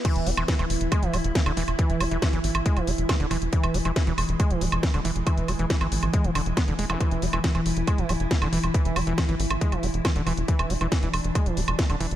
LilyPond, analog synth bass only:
\new Staff \with { instrumentName = "Analog synth bass" } { \clef bass \time 4/4 \key e \major \tempo 4 = 138 r16 e,,16 e,,16 e,,16 r16 e,,16 e,,16 e,,16 r16 e,,16 d,,16 e,,16 r16 e,,16 e,,16 e,,16 | r16 e,,16 e,,16 e,,16 r16 gis,,16 gis,,16 gis,,16 r16 e,,16 e,,16 e,,16 r16 e,,16 e,,16 e,,16 | r16 e,,16 e,,16 e,,16 r16 e,,16 e,,16 e,,16 r16 e,,16 d,,16 e,,16 r16 e,,16 e,,16 e,,16 | r16 e,,16 e,,16 e,,16 r16 gis,,16 gis,,16 gis,,16 r16 e,,16 e,,16 e,,16 r16 e,,16 e,,16 e,,16 |
r16 e,,16 e,,16 e,,16 r16 e,,16 e,,16 e,,16 r16 e,,16 d,,16 e,,16 r16 e,,16 e,,16 e,,16 | r16 e,,16 e,,16 e,,16 r16 gis,,16 gis,,16 gis,,16 r16 e,,16 e,,16 e,,16 r16 e,,16 e,,16 e,,16 | r16 e,,16 e,,16 e,,16 r16 e,,16 e,,16 e,,16 r16 e,,16 d,,16 e,,16 r16 e,,16 e,,16 e,,16 | }